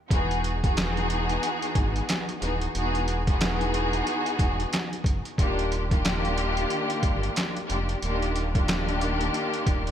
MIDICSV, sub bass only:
0, 0, Header, 1, 2, 480
1, 0, Start_track
1, 0, Tempo, 659341
1, 80, Time_signature, 4, 2, 24, 8
1, 7214, End_track
2, 0, Start_track
2, 0, Title_t, "Sub bass"
2, 0, Program_c, 0, 38
2, 78, Note_on_c, 0, 28, 109
2, 1010, Note_off_c, 0, 28, 0
2, 1277, Note_on_c, 0, 32, 94
2, 1469, Note_off_c, 0, 32, 0
2, 1761, Note_on_c, 0, 27, 93
2, 1951, Note_off_c, 0, 27, 0
2, 2002, Note_on_c, 0, 28, 111
2, 2932, Note_off_c, 0, 28, 0
2, 3198, Note_on_c, 0, 28, 96
2, 3390, Note_off_c, 0, 28, 0
2, 3672, Note_on_c, 0, 30, 92
2, 3790, Note_off_c, 0, 30, 0
2, 3919, Note_on_c, 0, 27, 109
2, 4850, Note_off_c, 0, 27, 0
2, 5118, Note_on_c, 0, 31, 83
2, 5310, Note_off_c, 0, 31, 0
2, 5604, Note_on_c, 0, 29, 94
2, 5794, Note_off_c, 0, 29, 0
2, 5842, Note_on_c, 0, 27, 107
2, 6772, Note_off_c, 0, 27, 0
2, 7038, Note_on_c, 0, 27, 96
2, 7214, Note_off_c, 0, 27, 0
2, 7214, End_track
0, 0, End_of_file